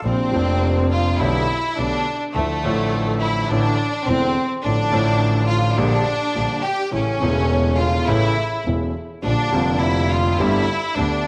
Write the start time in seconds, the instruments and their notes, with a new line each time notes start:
0.03 double bass A#1, grand piano A#1 A#2 C3 F3 A#3 D4, violin section C4
0.31 double bass F1, grand piano F1 F2 C3 F3 A#3
0.35 grand piano D4
0.92 violin section F4
1.19 double bass B1, grand piano B1 B2 D3 A3 B3 G4, violin section E4
1.77 double bass B1, grand piano B1 B2 D3 A3 B3 G4, violin section D4
2.33 double bass D2, grand piano D2 D3 F3 A3 E4, violin section A3
2.63 double bass A1, grand piano A1 A2 D3 F3 A3 E4
3.20 violin section E4
3.48 double bass A1, grand piano A1 A2 D3 E3 A3, violin section D4
3.52 grand piano E4
4.06 double bass E1, grand piano E1 E2 D3 E3 A3 E4, violin section C4
4.62 double bass A1, grand piano A1 A2 D3 F3 A3 E4, violin section D4
4.91 grand piano A1 A2 D3 F3 A3 E4, double bass A1
5.48 violin section F4
5.76 double bass A#1, grand piano A#1 A#2 D3 G3 A#3 G4, violin section D4
6.35 grand piano A#1 A#2 D3 G3 A#3 G4, double bass A#1
6.64 violin section G4
6.91 grand piano A1 A2 C#3 E3 A3 E4, double bass A1, violin section C#4
7.20 double bass E1, grand piano E1 E2 C#3 E3 A3 E4
7.78 violin section F4
8.07 double bass A1, grand piano A1 A2 C#3 E3 A3 E4, violin section E4
8.65 double bass E1, grand piano E1 E2 C#3 E3 A3 E4
9.23 double bass A#1, grand piano A#1 A#2 D3 G3 A#3 F4, violin section D4
9.51 double bass F1, grand piano F1 F2 D3 G3 A#3
9.55 grand piano F4
9.81 violin section E4
10.10 violin section F4
10.38 double bass G1, grand piano G1 G2 D3 A3 B3 G4, violin section E4
10.96 double bass D2, grand piano D2 D3 A3 B3 G4, violin section D4